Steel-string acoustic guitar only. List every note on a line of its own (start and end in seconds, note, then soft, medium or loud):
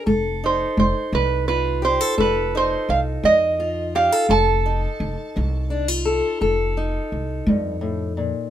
0.06 0.69 F2 medium
0.06 1.82 A4 medium
0.44 2.54 D#4 medium
1.13 1.76 F3 medium
1.49 3.59 F4 medium
1.82 2.01 G4 medium
2.01 2.16 A4 medium
2.17 2.81 F2 medium
2.17 3.94 A4 medium
2.55 4.26 D#4 medium
3.23 3.87 F3 medium
3.60 4.25 F4 medium
3.95 4.12 G4 medium
4.12 4.29 A4 medium
4.29 4.92 F2 medium
4.29 6.04 A4 medium
4.66 6.76 D#4 medium
5.36 5.99 F3 medium
5.70 5.88 D4 medium
5.88 8.50 F4 soft
6.05 6.40 A4 medium
6.41 7.04 F2 medium
6.41 8.48 A4 medium
6.77 8.48 D#4 medium
7.48 7.81 G2 medium
7.81 8.16 A2 medium
8.17 8.50 A#2 medium